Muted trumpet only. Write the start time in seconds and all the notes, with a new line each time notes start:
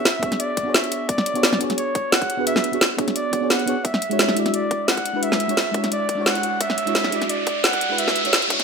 Already playing: E5
0.40 D5
0.74 E5
1.09 D5
1.78 C#5
2.13 F#5
2.47 E5
3.16 D5
3.50 F#5
3.85 E5
4.54 D5
4.88 F#5
5.23 E5
5.92 D5
6.26 F#5
6.61 E5
7.30 D5
7.64 F#5
7.99 E5